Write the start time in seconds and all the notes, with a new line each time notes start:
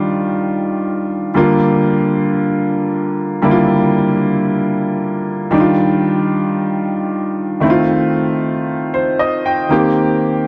Already playing: D#3 G3 D4 F4
1.34 D3 G3 A#3 F4
3.42 D3 G3 A#3 E4
3.51 F4
5.51 D#3 G3 D4 D#4
5.60 F4
7.60 D#3 A3 C4 E4
7.70 F4
8.94 C5
9.19 D#5
9.46 G5
9.69 D#3 A#3 C4 G4